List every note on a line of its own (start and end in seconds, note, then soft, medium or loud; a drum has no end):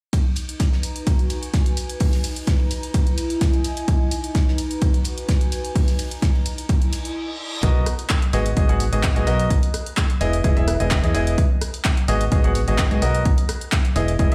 0.13 1.21 D#4 medium
0.13 kick loud
0.13 closed hi-hat medium
0.13 ride medium
0.36 3.18 B4 medium
0.36 open hi-hat loud
0.36 ride medium
0.45 1.21 A#5 medium
0.45 closed hi-hat medium
0.60 kick loud
0.60 snare loud
0.60 closed hi-hat medium
0.60 ride medium
0.72 snare medium
0.83 2.15 F#4 medium
0.83 open hi-hat loud
0.83 ride medium
0.96 closed hi-hat medium
1.01 2.15 G#5 medium
1.07 kick loud
1.07 closed hi-hat medium
1.07 ride medium
1.19 closed hi-hat soft
1.30 open hi-hat loud
1.30 ride medium
1.43 closed hi-hat soft
1.54 kick loud
1.54 snare loud
1.54 closed hi-hat medium
1.54 ride medium
1.66 closed hi-hat soft
1.77 2.71 D#4 medium
1.77 open hi-hat loud
1.77 ride medium
1.90 closed hi-hat soft
2.00 kick loud
2.00 closed hi-hat medium
2.00 open hi-hat medium
2.13 snare soft
2.13 open hi-hat medium
2.19 3.18 A#5 medium
2.24 open hi-hat loud
2.24 ride medium
2.36 closed hi-hat medium
2.47 kick loud
2.47 snare loud
2.47 closed hi-hat medium
2.47 ride medium
2.59 ride soft
2.71 3.88 E4 medium
2.71 open hi-hat loud
2.71 ride medium
2.83 closed hi-hat soft
2.94 kick loud
2.94 closed hi-hat medium
2.94 ride medium
3.07 4.16 D#5 medium
3.07 closed hi-hat soft
3.18 4.16 G#5 medium
3.18 open hi-hat loud
3.18 ride medium
3.30 closed hi-hat soft
3.41 kick loud
3.41 snare loud
3.41 closed hi-hat medium
3.41 ride medium
3.54 closed hi-hat soft
3.54 ride soft
3.64 open hi-hat loud
3.64 ride medium
3.77 closed hi-hat soft
3.77 ride soft
3.88 4.96 D#4 medium
3.88 kick loud
3.88 closed hi-hat medium
3.88 ride medium
4.11 open hi-hat loud
4.11 ride medium
4.20 6.93 B4 medium
4.20 4.96 A#5 medium
4.20 closed hi-hat soft
4.35 kick loud
4.35 snare loud
4.35 closed hi-hat medium
4.35 ride medium
4.48 snare medium
4.58 5.90 F#4 medium
4.58 open hi-hat loud
4.58 ride medium
4.71 closed hi-hat soft
4.82 kick loud
4.82 closed hi-hat medium
4.82 ride medium
4.94 closed hi-hat soft
5.01 5.90 G#5 medium
5.01 ride medium
5.05 open hi-hat loud
5.18 closed hi-hat soft
5.28 kick loud
5.28 snare loud
5.28 closed hi-hat medium
5.28 ride loud
5.41 closed hi-hat soft
5.52 6.46 D#4 medium
5.52 open hi-hat loud
5.52 ride medium
5.65 closed hi-hat soft
5.76 kick loud
5.76 closed hi-hat medium
5.76 open hi-hat medium
5.88 snare soft
5.88 open hi-hat medium
5.95 6.93 A#5 medium
5.99 open hi-hat loud
5.99 ride medium
6.11 closed hi-hat soft
6.22 kick loud
6.22 snare loud
6.22 closed hi-hat medium
6.22 ride medium
6.35 ride soft
6.45 7.16 E4 medium
6.45 open hi-hat loud
6.45 ride medium
6.58 closed hi-hat soft
6.64 7.16 D#5 medium
6.64 7.16 G#5 medium
6.69 kick loud
6.69 closed hi-hat medium
6.69 ride medium
6.69 reverse cymbal medium
6.82 closed hi-hat soft
6.93 open hi-hat loud
6.93 ride medium
7.05 closed hi-hat soft
7.63 7.83 B1 medium
7.63 7.85 B3 medium
7.63 7.85 F#4 medium
7.63 7.85 A#4 medium
7.63 7.85 D#5 loud
7.63 kick loud
7.63 closed hi-hat medium
7.86 cross-stick medium
7.86 open hi-hat loud
7.99 open hi-hat medium
8.10 kick loud
8.10 clap loud
8.10 closed hi-hat medium
8.22 closed hi-hat soft
8.33 8.55 G#1 loud
8.33 8.48 B3 medium
8.33 8.48 F#4 medium
8.33 8.48 G#4 medium
8.33 8.48 D#5 loud
8.33 open hi-hat loud
8.46 closed hi-hat medium
8.57 8.67 G#1 loud
8.57 8.67 B3 medium
8.57 8.67 F#4 medium
8.57 8.67 G#4 medium
8.57 8.67 D#5 medium
8.57 kick loud
8.57 closed hi-hat medium
8.69 8.90 G#1 medium
8.69 8.82 B3 medium
8.69 8.82 F#4 medium
8.69 8.82 G#4 medium
8.69 8.82 F#5 medium
8.69 closed hi-hat soft
8.80 open hi-hat loud
8.93 9.14 G#1 loud
8.93 9.06 B3 medium
8.93 9.06 F#4 medium
8.93 9.06 G#4 medium
8.93 9.06 D#5 medium
8.93 closed hi-hat medium
9.03 kick loud
9.03 clap loud
9.03 closed hi-hat medium
9.16 9.25 G#1 loud
9.16 9.25 B3 medium
9.16 9.25 F#4 medium
9.16 9.25 G#4 medium
9.16 9.25 D#5 medium
9.16 closed hi-hat soft
9.27 9.47 B1 loud
9.27 9.49 B3 medium
9.27 9.49 F#4 medium
9.27 9.49 A#4 medium
9.27 9.49 D#5 loud
9.27 open hi-hat loud
9.40 closed hi-hat medium
9.50 kick loud
9.50 closed hi-hat medium
9.63 open hi-hat medium
9.74 cross-stick medium
9.74 open hi-hat loud
9.86 closed hi-hat medium
9.97 kick loud
9.97 clap loud
9.97 closed hi-hat medium
10.10 closed hi-hat soft
10.21 10.42 E1 medium
10.21 10.35 B3 medium
10.21 10.35 E4 medium
10.21 10.35 G#4 medium
10.21 10.35 D#5 loud
10.21 open hi-hat loud
10.33 closed hi-hat medium
10.44 10.54 E1 medium
10.44 10.55 B3 medium
10.44 10.55 E4 medium
10.44 10.55 G#4 medium
10.44 10.55 D#5 medium
10.44 kick loud
10.44 closed hi-hat medium
10.57 10.78 E1 loud
10.57 10.70 B3 medium
10.57 10.70 E4 medium
10.57 10.70 G#4 medium
10.57 10.70 E5 medium
10.57 closed hi-hat soft
10.68 cross-stick medium
10.68 open hi-hat loud
10.80 11.01 E1 loud
10.80 10.93 B3 medium
10.80 10.93 E4 medium
10.80 10.93 G#4 medium
10.80 10.93 D#5 medium
10.80 closed hi-hat soft
10.91 kick loud
10.91 clap loud
10.91 closed hi-hat medium
11.03 11.12 E2 medium
11.03 11.13 B3 medium
11.03 11.13 E4 medium
11.03 11.13 G#4 medium
11.03 11.13 D#5 medium
11.03 closed hi-hat soft
11.14 11.34 E1 loud
11.14 11.37 B3 medium
11.14 11.37 E4 medium
11.14 11.37 G#4 medium
11.14 11.37 D#5 loud
11.14 open hi-hat loud
11.27 closed hi-hat medium
11.38 kick loud
11.38 closed hi-hat medium
11.61 cross-stick medium
11.61 open hi-hat loud
11.74 open hi-hat medium
11.85 kick loud
11.85 clap loud
11.85 closed hi-hat medium
11.97 closed hi-hat soft
12.08 12.30 G#1 loud
12.08 12.23 B3 medium
12.08 12.23 F#4 medium
12.08 12.23 G#4 medium
12.08 12.23 D#5 loud
12.08 open hi-hat loud
12.21 closed hi-hat soft
12.32 12.42 G#1 loud
12.32 12.42 B3 medium
12.32 12.42 F#4 medium
12.32 12.42 G#4 medium
12.32 12.42 D#5 loud
12.32 kick loud
12.32 closed hi-hat medium
12.44 12.65 G#1 medium
12.44 12.57 B3 medium
12.44 12.57 F#4 medium
12.44 12.57 G#4 medium
12.44 12.57 F#5 medium
12.44 closed hi-hat soft
12.55 open hi-hat loud
12.68 12.89 G#1 loud
12.68 12.81 B3 medium
12.68 12.81 F#4 medium
12.68 12.81 G#4 medium
12.68 12.81 D#5 medium
12.68 closed hi-hat soft
12.78 kick loud
12.78 clap loud
12.78 closed hi-hat medium
12.91 13.00 G#2 loud
12.91 13.00 B3 medium
12.91 13.00 F#4 medium
12.91 13.00 G#4 medium
12.91 13.00 D#5 medium
12.91 closed hi-hat soft
13.02 13.22 B1 loud
13.02 13.24 B3 medium
13.02 13.24 F#4 medium
13.02 13.24 A#4 medium
13.02 13.24 D#5 loud
13.02 open hi-hat loud
13.15 closed hi-hat soft
13.25 kick loud
13.25 closed hi-hat medium
13.38 open hi-hat medium
13.49 cross-stick medium
13.49 open hi-hat loud
13.61 closed hi-hat soft
13.72 kick loud
13.72 clap loud
13.72 closed hi-hat medium
13.85 closed hi-hat soft
13.96 14.17 E1 loud
13.96 14.10 B3 medium
13.96 14.10 E4 medium
13.96 14.10 G#4 medium
13.96 14.10 D#5 loud
13.96 open hi-hat loud
14.08 closed hi-hat soft
14.19 14.29 E1 loud
14.19 14.30 B3 medium
14.19 14.30 E4 medium
14.19 14.30 G#4 medium
14.19 14.30 D#5 medium
14.19 kick loud
14.19 closed hi-hat medium
14.32 14.35 E1 medium
14.32 14.35 B3 medium
14.32 14.35 E4 medium
14.32 14.35 G#4 medium
14.32 14.35 E5 medium
14.32 closed hi-hat soft